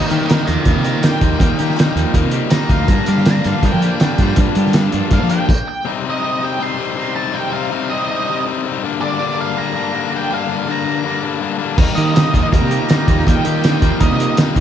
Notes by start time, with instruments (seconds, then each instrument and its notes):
Already playing: distorted electric guitar D#3 G3 A#3 D#4, clean electric guitar D#3 A#3
0.06 lead electric guitar D#5 G5
0.10 fingered electric bass D#3, distorted electric guitar A#3 D#4, clean electric guitar G4, closed hi-hat
0.14 distorted electric guitar G3
0.21 snare
0.26 distorted electric guitar D#3, clean electric guitar D#4, lead electric guitar D#5 G5, closed hi-hat, tambourine
0.30 distorted electric guitar G3 A#3 D#4, snare
0.46 fingered electric bass D#2, clean electric guitar F3, distorted electric guitar A#3 D#4, lead electric guitar G5 A#5, closed hi-hat
0.51 distorted electric guitar G3
0.65 fingered electric bass D#2, distorted electric guitar D#3 G3 A#3 D#4, clean electric guitar A#3, lead electric guitar G5 A#5, kick, closed hi-hat
0.76 fingered electric bass C3
0.83 distorted electric guitar G3 A#3 D#4, clean electric guitar G4, lead electric guitar G5 A#5, closed hi-hat
0.87 distorted electric guitar D#3
1.02 distorted electric guitar D#3 G3 A#3 D#4, clean electric guitar D#4, lead electric guitar G5, snare, closed hi-hat, tambourine
1.21 fingered electric bass D#2, clean electric guitar F3, distorted electric guitar G3 A#3 D#4, kick, closed hi-hat
1.39 fingered electric bass D#2, distorted electric guitar D#3 G3 A#3 D#4, clean electric guitar D#3, kick, closed hi-hat
1.58 fingered electric bass D#3, distorted electric guitar G3 A#3 D#4, clean electric guitar G4, closed hi-hat
1.70 snare
1.76 distorted electric guitar D#3 G3 A#3 D#4, closed hi-hat, tambourine
1.79 clean electric guitar D#4, snare, tambourine
1.96 fingered electric bass D#2, clean electric guitar F3, distorted electric guitar G3 A#3 D#4, closed hi-hat
2.14 fingered electric bass D#2, distorted electric guitar D#3 G3 A#3 D#4, clean electric guitar A#3, kick, closed hi-hat
2.24 fingered electric bass C3
2.31 distorted electric guitar D#3 G3 A#3 D#4, clean electric guitar G4, closed hi-hat
2.50 distorted electric guitar D#3 G3 A#3 D#4, clean electric guitar D#4, lead electric guitar A#5, snare, closed hi-hat, tambourine
2.69 fingered electric bass D2, clean electric guitar F3, distorted electric guitar G3 A#3 D#4, lead electric guitar F5, kick, closed hi-hat
2.88 fingered electric bass G2, distorted electric guitar G2 D3 G3 A#3 D4, clean electric guitar G2, lead electric guitar A#5, kick, closed hi-hat
3.06 fingered electric bass G3, distorted electric guitar A#3 D4, clean electric guitar G4, lead electric guitar F5, closed hi-hat
3.11 distorted electric guitar G3
3.17 snare
3.25 clean electric guitar D4, lead electric guitar A#5, snare, closed hi-hat, tambourine
3.27 distorted electric guitar G2 D3 G3 A#3 D4, tambourine
3.44 fingered electric bass G2, clean electric guitar F3, distorted electric guitar A#3 D4, lead electric guitar F5, closed hi-hat
3.49 distorted electric guitar G3
3.63 fingered electric bass G2, distorted electric guitar D3 G3 A#3 D4, clean electric guitar A#3, lead electric guitar G5, kick, closed hi-hat
3.74 fingered electric bass F3
3.82 distorted electric guitar G2 D3 G3 A#3 D4, clean electric guitar G4, closed hi-hat
4.00 distorted electric guitar D3, snare, closed hi-hat, tambourine
4.01 distorted electric guitar G3 A#3 D4, clean electric guitar D4, tambourine
4.18 fingered electric bass G2, clean electric guitar F3, distorted electric guitar G3 A#3 D4, kick, closed hi-hat
4.36 fingered electric bass G2, distorted electric guitar G2 D3 G3 A#3, clean electric guitar G2, kick, closed hi-hat
4.40 distorted electric guitar D4
4.55 fingered electric bass G3, distorted electric guitar A#3 D4, clean electric guitar G4, closed hi-hat
4.59 distorted electric guitar G3
4.66 snare
4.73 distorted electric guitar G2, snare, closed hi-hat, tambourine
4.76 distorted electric guitar D3 G3 A#3 D4, clean electric guitar D4, tambourine
4.92 fingered electric bass G2, clean electric guitar F3, distorted electric guitar G3 A#3 D4, closed hi-hat
5.11 fingered electric bass G2, distorted electric guitar D3 G3 A#3 D4, clean electric guitar A#3, lead electric guitar F5, kick, closed hi-hat
5.23 fingered electric bass F3
5.30 distorted electric guitar G2 D3 G3 A#3 D4, clean electric guitar G4, lead electric guitar G5, closed hi-hat
5.49 kick, crash
5.68 lead electric guitar G5
5.85 distorted electric guitar C3 G3 C4 D#4
6.04 distorted electric guitar G3 C4 D#4
6.10 lead electric guitar D#5
6.22 distorted electric guitar C3 G3 C4 D#4
6.40 distorted electric guitar G3 C4 D#4
6.45 lead electric guitar G5
6.58 distorted electric guitar C3 G3 C4 D#4
6.63 lead electric guitar C6
6.78 distorted electric guitar C3 G3 C4 D#4
6.96 distorted electric guitar C3 G3 C4 D#4
7.16 distorted electric guitar G3 C4 D#4, lead electric guitar A5
7.33 distorted electric guitar C3 G3 C4 D#4, lead electric guitar G5
7.52 distorted electric guitar G3 C4 D#4, lead electric guitar F5
7.71 distorted electric guitar C3 G3 C4 D#4
7.90 distorted electric guitar G3 C4 D#4, lead electric guitar D#5
8.08 distorted electric guitar C3 G3 C4 D#4, lead electric guitar D#5
8.27 distorted electric guitar C3 G3 C4 D#4
8.46 distorted electric guitar C3 G3 C4 D#4
8.65 distorted electric guitar G3 C4 D#4
8.83 distorted electric guitar G2 D3 G3 A#3 D4
9.01 distorted electric guitar G3 A#3 D4, lead electric guitar D5
9.20 distorted electric guitar G2 D3 G3 A#3 D4
9.38 distorted electric guitar G3 A#3 D4, lead electric guitar F5
9.56 distorted electric guitar D3 G3 A#3 D4, lead electric guitar A#5
9.75 distorted electric guitar G2 D3 G3 A#3 D4
9.94 distorted electric guitar D3 G3 A#3 D4
10.12 distorted electric guitar G3 A#3 D4
10.17 lead electric guitar G5
10.31 distorted electric guitar G2 D3 G3 A#3 D4, lead electric guitar F5
10.48 distorted electric guitar G3 A#3 D4
10.67 distorted electric guitar G2 D3 G3 A#3 D4
10.71 lead electric guitar A#5
10.85 distorted electric guitar G3 A#3 D4
11.04 distorted electric guitar D3 G3 A#3 D4
11.22 distorted electric guitar G2 D3 G3 A#3 D4
11.40 distorted electric guitar D3 G3 A#3 D4
11.58 distorted electric guitar G3 A#3 D4
11.78 fingered electric bass D#2, distorted electric guitar D#3 G3 A#3 D#4, clean electric guitar D#3, kick, crash
11.95 fingered electric bass D#3, distorted electric guitar G3 A#3 D#4, trumpet A#3, clean electric guitar G4, lead electric guitar D#5, closed hi-hat
12.14 distorted electric guitar D#3 G3 A#3 D#4, clean electric guitar D#4, snare, closed hi-hat, tambourine
12.34 fingered electric bass D#2, clean electric guitar F3, distorted electric guitar G3 A#3 D#4, kick, closed hi-hat
12.53 fingered electric bass D#2, distorted electric guitar D#3 G3 A#3 D#4, clean electric guitar A#3, trumpet G4, lead electric guitar A#5, kick, closed hi-hat
12.61 fingered electric bass C3
12.71 distorted electric guitar D#3 G3 A#3 D#4, clean electric guitar G4, closed hi-hat
12.89 distorted electric guitar D#3 G3 A#3 D#4, clean electric guitar D#4, snare, closed hi-hat, tambourine
13.08 fingered electric bass D#2, clean electric guitar F3, distorted electric guitar G3 A#3 D#4, kick, closed hi-hat
13.19 snare
13.27 fingered electric bass D#2, clean electric guitar D#3, distorted electric guitar D#3 G3 A#3 D#4, trumpet D#4, lead electric guitar G5, kick, closed hi-hat
13.45 fingered electric bass D#3, distorted electric guitar G3 A#3 D#4, clean electric guitar G4, closed hi-hat
13.63 distorted electric guitar D#3 G3 A#3 D#4, clean electric guitar D#4, snare, closed hi-hat, tambourine
13.81 fingered electric bass D#2, clean electric guitar F3, distorted electric guitar G3 A#3 D#4, kick, closed hi-hat
14.00 fingered electric bass D#2, distorted electric guitar D#3 G3 A#3 D#4, clean electric guitar A#3, trumpet A#3, lead electric guitar D#5, kick, closed hi-hat
14.11 fingered electric bass C3
14.18 distorted electric guitar D#3 G3 A#3 D#4, clean electric guitar G4, closed hi-hat
14.37 distorted electric guitar D#3 G3 A#3 D#4, clean electric guitar D#4, snare, closed hi-hat, tambourine
14.55 fingered electric bass D#2, clean electric guitar F3, distorted electric guitar A#3 D#4, kick, closed hi-hat